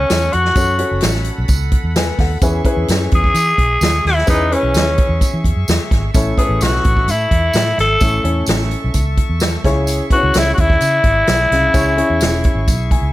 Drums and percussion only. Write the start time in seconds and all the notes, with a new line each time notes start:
0.10 snare, closed hi-hat, tambourine
0.33 closed hi-hat
0.45 snare
0.55 kick, closed hi-hat, tambourine
0.79 closed hi-hat
1.01 snare, closed hi-hat, tambourine
1.14 snare
1.24 closed hi-hat
1.48 kick, closed hi-hat, tambourine
1.72 kick, closed hi-hat
1.96 snare, closed hi-hat, tambourine
2.19 kick, snare, open hi-hat
2.41 kick, closed hi-hat, tambourine
2.65 kick, closed hi-hat
2.88 snare, closed hi-hat, tambourine
3.11 kick, closed hi-hat
3.24 kick
3.34 closed hi-hat, tambourine
3.58 kick, closed hi-hat
3.81 snare, closed hi-hat, tambourine
4.07 snare, open hi-hat
4.18 snare
4.27 kick, closed hi-hat, tambourine
4.52 closed hi-hat
4.74 snare, closed hi-hat, tambourine
4.98 kick, closed hi-hat
5.21 kick, closed hi-hat, tambourine
5.44 kick, closed hi-hat
5.68 snare, closed hi-hat, tambourine
5.91 kick, snare, closed hi-hat
6.14 kick, closed hi-hat, tambourine
6.38 kick, closed hi-hat
6.61 snare, closed hi-hat, tambourine
6.75 snare
6.84 kick, closed hi-hat
6.97 kick
7.08 closed hi-hat, tambourine
7.31 kick, closed hi-hat
7.53 snare, closed hi-hat, tambourine
7.79 snare, closed hi-hat
8.00 kick, closed hi-hat, tambourine
8.25 closed hi-hat
8.46 snare, closed hi-hat, tambourine
8.62 snare
8.71 closed hi-hat
8.94 kick, closed hi-hat, tambourine
9.17 kick, closed hi-hat
9.40 snare, closed hi-hat, tambourine
9.64 kick, snare, closed hi-hat
9.87 closed hi-hat, tambourine
10.11 kick, closed hi-hat
10.34 snare, closed hi-hat, tambourine
10.57 kick, closed hi-hat
10.70 kick
10.80 closed hi-hat, tambourine
11.04 kick, closed hi-hat
11.27 snare, closed hi-hat, tambourine
11.52 snare, closed hi-hat
11.74 kick, closed hi-hat, tambourine
11.98 closed hi-hat
12.20 snare, closed hi-hat, tambourine
12.44 kick, closed hi-hat
12.67 kick, closed hi-hat, tambourine
12.91 kick, closed hi-hat